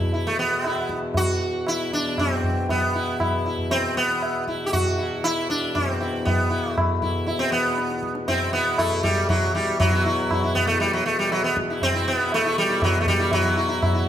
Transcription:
Already playing: E2 B2 E4
0.00 tabla ge
0.13 E4, tabla tin
0.27 A3
0.39 B3
0.64 E4, tabla na
0.89 tabla ke
1.14 F#4, tabla tin, tabla ge
1.67 E4, tabla na
1.93 D4
2.18 C4, tabla na, tabla ge
2.43 tabla ge
2.69 B3, tabla tin, tabla ge
2.95 E4
3.20 E4, tabla na, tabla ge
3.45 E4, tabla te
3.58 tabla ge
3.71 C4, tabla tin
3.97 B3
4.22 tabla na
4.48 E4, tabla ke
4.66 G4
4.73 F#4, tabla tin, tabla ge
4.98 E4
5.24 E4, tabla na
5.50 D4
5.75 C4, tabla tin, tabla ge
6.00 E4
6.25 B3, tabla tin, tabla ge
6.50 E4
6.71 A3
6.78 tabla na, tabla ge
7.02 E4, tabla ge
7.26 E4, tabla tin
7.39 C4
7.52 B3
7.78 tabla te
7.90 tabla te
8.03 tabla ke
8.15 tabla te
8.28 C4 E4, tabla tin, tabla ge
8.53 B3 E4
8.78 A3 E4, tabla na, tabla ge
9.03 G3 E4, tabla ge
9.29 F#3 E4, tabla tin, tabla ge
9.55 G3 E4
9.80 E2 B2 F#3, tabla tin, tabla ge
9.93 E4
10.06 E4
10.31 E4, tabla na, tabla ge
10.43 E4
10.55 B3, tabla ge
10.67 A3
10.80 G3, tabla tin
10.93 F#3
11.06 A3
11.19 G3
11.32 F#3, tabla na
11.44 B3
11.57 tabla ke
11.70 E4
11.82 C4, tabla tin, tabla ge
11.95 E4
12.08 B3
12.20 E4
12.32 A3, tabla na
12.45 E4
12.58 G3
12.69 E4
12.82 F#3, tabla na, tabla ge
13.01 A3
13.06 G3, tabla ge
13.19 E4
13.32 F#3, tabla tin, tabla ge
13.44 E4
13.56 E4
13.68 E4
13.82 E4, tabla na, tabla ge
13.94 E4

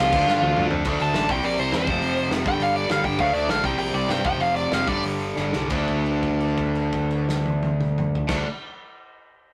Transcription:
Already playing: C#2 F2 C3 F3 F4 F5
0.00 F2 C3 F3
0.12 D2 D3 A3 D4, kick, crash
0.27 G2, snare
0.42 D2, high tom
0.56 D2 D3 A3 D4, mid tom
0.70 F2, floor tom
0.85 D2 D3 A3, kick, crash
0.89 D4
1.00 D2 A5, open hi-hat
1.14 A1, snare, open hi-hat
1.28 C2 C3 G3 C4 G5, kick, open hi-hat
1.43 A#1 D5, open hi-hat
1.58 C2 C5, open hi-hat
1.72 E2 C3 G3 C4 C5, snare, open hi-hat
1.87 F1 F2 C3 F3, kick, open hi-hat
2.02 F1, open hi-hat
2.16 open hi-hat
2.30 F1 F2 C3, snare, open hi-hat
2.34 F3
2.45 G1 G2 D3 G3 G5, kick, open hi-hat
2.59 G1 F5, open hi-hat
2.76 D5, open hi-hat
2.89 G1 G2 D3 G3 F5, snare, open hi-hat
3.04 G1 G2 D3 G3 G5, kick, open hi-hat
3.19 D2 D3 A3 D4 F5, kick, open hi-hat
3.33 D2 D5, open hi-hat
3.47 A#1 F5, snare, open hi-hat
3.63 C2 C3 G3 C4 G5, kick, open hi-hat
3.77 A#1 G5, open hi-hat
3.93 C2 D5, open hi-hat
4.08 G2 C3 G3 C4 G5, snare, open hi-hat
4.23 F1 F2 C3 F3 G5, kick, open hi-hat
4.39 F1 F5, open hi-hat
4.56 D5, open hi-hat
4.71 F1 F2 C3 F3 F5, snare, open hi-hat
4.87 G1 G2 D3 G3 D5, kick, open hi-hat
5.03 G1, open hi-hat
5.19 open hi-hat
5.36 G1 G2 D3 G3, snare
5.53 C2 G2 D3 G3, snare
5.69 D2 D3 A3, kick, crash
5.73 D4
5.88 kick, crash
6.06 crash
6.23 kick, crash
6.40 crash
6.57 kick, crash
6.75 crash
6.93 kick, crash
7.11 crash
7.29 snare
7.46 high tom
7.63 high tom
7.81 mid tom
7.98 mid tom
8.15 floor tom
8.27 D2 D3 A3, kick, snare, crash
8.32 D4

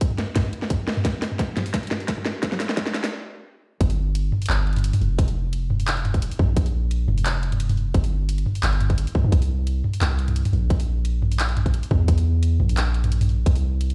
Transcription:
0.01 kick, closed hi-hat
0.10 mid tom
0.18 snare, closed hi-hat
0.36 kick, snare, closed hi-hat, mid tom
0.53 closed hi-hat
0.62 snare
0.70 kick, closed hi-hat, mid tom
0.88 snare
0.97 mid tom
1.05 kick, snare, closed hi-hat
1.22 snare, open hi-hat
1.31 mid tom
1.39 kick, snare, closed hi-hat
1.57 snare, closed hi-hat, mid tom
1.66 open hi-hat
1.74 kick, snare, closed hi-hat
1.83 open hi-hat
1.87 snare, closed hi-hat, mid tom
2.00 open hi-hat
2.08 kick, snare, closed hi-hat
2.18 mid tom
2.26 snare
2.43 kick, snare, closed hi-hat
2.52 snare, mid tom
2.60 snare, open hi-hat
2.69 snare
2.77 kick, snare, closed hi-hat, mid tom
2.87 snare
2.94 snare, closed hi-hat
3.04 snare, open hi-hat
3.81 G1, kick, closed hi-hat
3.90 open hi-hat
4.15 closed hi-hat
4.32 mid tom
4.42 closed hi-hat, open hi-hat
4.49 G1, clap
4.67 closed hi-hat
4.73 closed hi-hat
4.76 closed hi-hat, mid tom
4.79 closed hi-hat
4.84 closed hi-hat
4.93 mid tom, open hi-hat
5.01 F1, open hi-hat
5.19 kick, closed hi-hat
5.28 open hi-hat
5.53 closed hi-hat
5.70 mid tom
5.80 open hi-hat
5.88 clap, closed hi-hat
5.97 open hi-hat
6.05 closed hi-hat, mid tom
6.14 kick, closed hi-hat
6.22 closed hi-hat
6.31 open hi-hat
6.39 A#1, kick, mid tom
6.57 kick, closed hi-hat
6.66 open hi-hat
6.91 closed hi-hat
7.08 F1, mid tom
7.18 open hi-hat
7.26 clap, closed hi-hat
7.43 closed hi-hat
7.52 closed hi-hat, mid tom
7.60 closed hi-hat
7.69 mid tom, open hi-hat
7.77 open hi-hat
7.94 G1, kick, closed hi-hat
8.04 open hi-hat
8.29 closed hi-hat
8.38 closed hi-hat
8.46 mid tom
8.55 open hi-hat
8.63 G1, clap, closed hi-hat
8.73 open hi-hat
8.81 closed hi-hat, mid tom
8.90 kick, closed hi-hat
8.98 closed hi-hat
9.07 open hi-hat
9.15 kick, mid tom
9.24 G2
9.32 C2, kick, closed hi-hat
9.42 open hi-hat
9.67 closed hi-hat
9.84 mid tom
9.93 open hi-hat
10.01 C2, clap, closed hi-hat
10.19 closed hi-hat
10.28 closed hi-hat, mid tom
10.36 closed hi-hat
10.45 mid tom, open hi-hat
10.53 A#1, open hi-hat
10.70 kick, closed hi-hat
10.80 open hi-hat
11.05 closed hi-hat
11.22 mid tom
11.32 open hi-hat
11.40 clap, closed hi-hat
11.49 open hi-hat
11.57 closed hi-hat, mid tom
11.66 kick, closed hi-hat
11.74 closed hi-hat
11.83 open hi-hat
11.91 E2, kick, mid tom
12.08 kick, closed hi-hat
12.18 open hi-hat
12.43 closed hi-hat
12.60 A#1, mid tom
12.69 open hi-hat
12.77 clap, closed hi-hat
12.94 closed hi-hat
13.04 closed hi-hat, mid tom
13.12 closed hi-hat
13.21 mid tom, open hi-hat
13.29 open hi-hat
13.46 C2, kick, closed hi-hat
13.56 open hi-hat
13.81 closed hi-hat
13.90 closed hi-hat

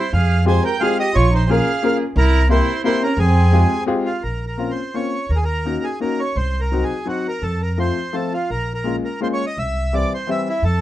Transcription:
Already playing: C5
0.00 E4
0.13 F2 G#4 F5
0.45 G#3 C4 F4 G4 G#4 C5 G#5
0.65 A#4 G5
0.80 G#3 C4 F4 G4 G#4 F5
0.99 G4 D#5
1.14 A#1 F4 C#5
1.33 D#4 C5
1.49 A#3 C#4 F4 G#4 A#4 F5
1.83 A#3 C#4 F4 G#4 A#4
2.16 C2 E4 A#4
2.49 A#3 C4 E4 G4 A#4 C5
2.84 A#3 C4 E4 G4 A#4 C5
3.03 C#4 A#4
3.17 F2 C4 G#4
3.52 G#3 C4 F4 G4 G#4
3.86 G#3 C4 F4 G4 G#4
4.06 F4
4.23 A#1 A#4
4.47 A#4
4.58 A#3 C4 C#4 F4
4.71 C5
4.94 A#3 C4 C#4 F4 C#5
5.29 D#2 A#4
5.36 G#4
5.45 A#4
5.65 A#3 C#4 D#4 F#4
5.84 G#4
6.00 A#3 C#4 D#4 F#4 A#4
6.20 C#5
6.36 C2 C5
6.60 A#4
6.72 F#3 C4 D#4 F#4
6.83 G#4
7.05 F#3 C4 D#4 F#4
7.28 A#4
7.42 F2 A4
7.62 A#4
7.78 F3 A3 C4 F4 C5
8.13 F3 A3 C4 F4 A4
8.34 F4
8.50 A#1 A#4
8.74 A#4
8.84 G#3 A#3 C#4 F4
9.04 A#4
9.21 G#3 A#3 C#4 F4 C5
9.33 C#5
9.47 D#5
9.57 C2 E5
9.93 E3 G3 C4 E4 D5
10.14 C5
10.27 E3 G3 C4 E4 E5
10.49 E4
10.62 F2 A4

